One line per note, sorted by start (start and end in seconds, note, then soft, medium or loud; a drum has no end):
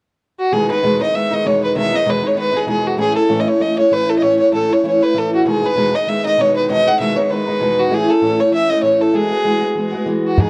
0.39 0.54 F#4 medium
0.51 0.69 E2 medium
0.51 0.69 B2 medium
0.51 0.69 D#3 medium
0.51 0.69 G#3 medium
0.51 0.69 B3 medium
0.51 0.67 D#4 medium
0.51 0.69 G#4 medium
0.69 0.82 D#3 soft
0.69 0.82 G#3 soft
0.69 0.83 B3 soft
0.69 0.82 D#4 soft
0.69 0.98 B4 medium
0.82 0.99 E2 medium
0.82 1.00 B2 medium
0.82 1.00 D#3 medium
0.82 0.99 G#3 medium
0.82 0.99 B3 medium
0.82 0.98 D#4 medium
0.99 1.12 D#3 soft
0.99 1.13 G#3 soft
0.99 1.13 B3 soft
0.99 1.13 D#4 soft
0.99 1.17 D#5 medium
1.13 1.30 D#3 soft
1.13 1.31 G#3 soft
1.13 1.30 B3 medium
1.13 1.29 D#4 medium
1.13 1.35 E5 medium
1.30 1.44 D#3 soft
1.30 1.44 G#3 soft
1.30 1.44 B3 soft
1.30 1.44 D#4 soft
1.30 1.48 D#5 medium
1.44 1.74 E2 soft
1.44 1.74 B2 soft
1.44 1.74 D#3 medium
1.44 1.75 G#3 medium
1.44 1.76 B3 medium
1.44 1.76 D#4 medium
1.44 1.62 C#5 medium
1.64 1.75 B4 medium
1.75 1.92 E2 medium
1.75 1.92 B2 medium
1.75 1.92 D#3 medium
1.75 1.92 G#3 medium
1.75 1.92 B3 medium
1.75 1.90 D#4 medium
1.75 1.97 E5 medium
1.92 2.05 D#3 soft
1.92 2.05 G#3 soft
1.92 2.06 B3 soft
1.92 2.05 D#4 soft
1.92 2.11 D#5 medium
2.05 2.23 E2 medium
2.05 2.23 B2 medium
2.05 2.23 D#3 medium
2.05 2.23 G#3 medium
2.05 2.22 B3 medium
2.05 2.21 D#4 medium
2.10 2.29 B4 medium
2.23 2.33 D#3 soft
2.23 2.35 G#3 soft
2.23 2.35 B3 soft
2.23 2.36 D#4 soft
2.27 2.38 C#5 medium
2.35 2.53 D#3 medium
2.35 2.52 G#3 medium
2.35 2.51 B3 medium
2.35 2.50 D#4 medium
2.39 2.58 B4 medium
2.52 2.66 D#3 soft
2.52 2.66 G#3 soft
2.52 2.66 B3 soft
2.52 2.66 D#4 soft
2.57 2.69 G#4 medium
2.66 2.97 E2 medium
2.66 2.97 B2 medium
2.66 2.97 D#3 medium
2.66 2.98 G#3 medium
2.66 2.98 B3 medium
2.66 2.98 D#4 medium
2.66 2.89 G#4 medium
2.87 2.99 F#4 medium
2.97 3.15 A2 medium
2.97 3.15 E3 medium
2.97 3.15 A3 medium
2.97 3.14 C#4 medium
2.97 3.13 E4 medium
2.97 3.15 G#4 medium
3.14 3.29 A3 soft
3.14 3.29 C#4 soft
3.14 3.28 E4 soft
3.14 3.41 A4 medium
3.29 3.46 A2 medium
3.29 3.46 E3 medium
3.29 3.47 A3 medium
3.29 3.46 C#4 medium
3.29 3.45 E4 medium
3.40 3.49 D#5 medium
3.46 3.59 A3 soft
3.46 3.59 C#4 soft
3.46 3.60 E4 soft
3.46 3.63 C#5 medium
3.59 3.77 E3 soft
3.59 3.77 A3 soft
3.59 3.77 C#4 medium
3.59 3.75 E4 medium
3.59 3.78 D#5 medium
3.76 3.90 A3 soft
3.76 3.91 C#4 soft
3.76 3.90 E4 soft
3.76 3.94 C#5 medium
3.90 4.20 A2 medium
3.90 4.22 E3 medium
3.90 4.21 A3 medium
3.90 4.22 C#4 medium
3.90 4.23 E4 medium
3.90 4.11 B4 medium
4.09 4.18 A4 medium
4.18 4.39 A2 medium
4.18 4.39 C#5 medium
4.18 4.24 D#5 medium
4.22 4.39 E3 medium
4.22 4.39 A3 medium
4.22 4.38 C#4 medium
4.22 4.37 E4 medium
4.38 4.52 A3 soft
4.38 4.52 C#4 soft
4.38 4.52 E4 soft
4.38 4.52 C#5 medium
4.52 4.69 A2 medium
4.52 4.70 E3 medium
4.52 4.70 A3 medium
4.52 4.69 C#4 medium
4.52 4.68 E4 medium
4.52 4.74 A4 medium
4.69 4.83 A3 soft
4.69 4.84 C#4 soft
4.69 4.83 E4 soft
4.69 4.85 C#5 medium
4.83 5.00 E3 medium
4.83 5.01 A3 medium
4.83 5.01 C#4 medium
4.83 4.99 E4 medium
4.83 5.04 C#5 medium
5.00 5.13 A3 soft
5.00 5.13 C#4 soft
5.00 5.14 E4 soft
5.00 5.20 B4 medium
5.14 5.45 A2 medium
5.14 5.45 E3 medium
5.14 5.45 A3 medium
5.14 5.45 C#4 medium
5.14 5.46 E4 medium
5.18 5.33 A4 medium
5.35 5.46 F#4 medium
5.45 5.62 E2 medium
5.45 5.62 B2 medium
5.45 5.62 D#3 medium
5.45 5.63 G#3 medium
5.45 5.61 B3 medium
5.45 5.60 D#4 medium
5.45 5.67 G#4 medium
5.62 5.75 D#3 soft
5.62 5.75 G#3 soft
5.62 5.76 B3 soft
5.62 5.75 D#4 soft
5.66 5.96 B4 medium
5.76 5.93 E2 medium
5.76 5.93 B2 medium
5.76 5.93 D#3 medium
5.76 5.93 G#3 medium
5.76 5.93 B3 medium
5.76 5.91 D#4 medium
5.92 6.05 D#3 soft
5.92 6.06 G#3 soft
5.92 6.07 B3 soft
5.92 6.06 D#4 soft
5.92 6.10 D#5 medium
6.07 6.24 D#3 soft
6.07 6.24 G#3 medium
6.07 6.24 B3 medium
6.07 6.23 D#4 medium
6.07 6.25 E5 medium
6.24 6.37 D#3 soft
6.24 6.37 G#3 soft
6.24 6.38 B3 soft
6.24 6.38 D#4 soft
6.24 6.43 D#5 medium
6.37 6.67 E2 soft
6.37 6.68 B2 soft
6.37 6.68 D#3 medium
6.37 6.68 G#3 medium
6.37 6.69 B3 medium
6.37 6.69 D#4 medium
6.41 6.56 C#5 medium
6.56 6.68 B4 medium
6.68 6.85 E2 medium
6.68 6.86 B2 medium
6.68 6.86 D#3 medium
6.68 6.86 G#3 medium
6.68 6.86 B3 medium
6.68 6.84 D#4 medium
6.68 6.89 D#5 loud
6.85 6.99 D#3 soft
6.85 6.99 G#3 soft
6.85 7.00 B3 soft
6.85 6.99 D#4 soft
6.85 6.99 F#5 medium
7.00 7.16 E2 medium
7.00 7.16 B2 medium
7.00 7.17 D#3 medium
7.00 7.17 G#3 medium
7.00 7.16 B3 medium
7.00 7.15 D#4 medium
7.00 7.18 E5 medium
7.16 7.29 D#3 soft
7.16 7.29 G#3 soft
7.16 7.30 B3 soft
7.16 7.29 D#4 soft
7.16 7.33 C#5 medium
7.30 7.47 D#3 medium
7.30 7.47 G#3 medium
7.30 7.46 B3 medium
7.30 7.45 D#4 medium
7.30 7.81 B4 medium
7.46 7.59 D#3 soft
7.46 7.60 G#3 soft
7.46 7.60 B3 soft
7.46 7.60 D#4 soft
7.59 7.91 E2 medium
7.59 7.89 B2 medium
7.59 7.90 D#3 medium
7.59 7.90 G#3 medium
7.59 7.91 B3 medium
7.59 7.91 D#4 medium
7.79 7.96 F#4 medium
7.89 8.07 A2 medium
7.89 8.08 E3 medium
7.89 8.08 A3 medium
7.89 8.08 C#4 medium
7.89 8.07 E4 medium
7.94 8.12 G#4 medium
8.08 8.21 A3 soft
8.08 8.21 C#4 soft
8.08 8.22 E4 soft
8.08 8.41 A4 medium
8.21 8.39 A2 medium
8.21 8.39 E3 medium
8.21 8.39 A3 medium
8.21 8.39 C#4 medium
8.21 8.38 E4 medium
8.39 8.51 A3 soft
8.39 8.52 C#4 soft
8.39 8.53 E4 soft
8.39 8.53 C#5 medium
8.52 8.69 E3 medium
8.52 8.69 A3 medium
8.52 8.69 C#4 medium
8.52 8.68 E4 medium
8.52 8.71 E5 medium
8.69 8.82 A3 soft
8.69 8.83 C#4 soft
8.69 8.83 E4 soft
8.69 8.82 D#5 medium
8.82 9.13 A2 medium
8.82 9.13 E3 medium
8.82 9.13 A3 medium
8.82 9.14 C#4 medium
8.82 9.15 E4 medium
8.82 9.03 C#5 medium
9.01 9.16 A4 medium
9.13 9.31 E3 medium
9.13 9.31 G#3 medium
9.13 9.31 B3 medium
9.13 9.29 F#4 medium
9.13 10.06 G#4 medium
9.30 9.44 G#3 soft
9.30 9.44 B3 soft
9.30 9.44 F#4 soft
9.44 9.61 E3 medium
9.44 9.62 G#3 medium
9.44 9.61 B3 medium
9.44 9.59 F#4 medium
9.61 9.75 G#3 soft
9.61 9.76 B3 medium
9.61 9.75 F#4 soft
9.75 9.92 E3 medium
9.75 9.93 G#3 medium
9.75 9.93 B3 medium
9.75 9.91 F#4 medium
9.92 10.05 G#3 soft
9.92 10.06 B3 soft
9.92 10.06 F#4 medium
10.06 10.37 E3 medium
10.06 10.38 G#3 medium
10.06 10.38 B3 medium
10.06 10.37 F#4 medium
10.27 10.42 F#4 medium
10.37 10.50 E2 medium
10.37 10.50 B2 medium
10.37 10.50 D#3 medium
10.37 10.50 G#3 medium
10.37 10.50 B3 medium
10.37 10.50 D#4 medium
10.37 10.50 G#4 medium
10.37 bodhran medium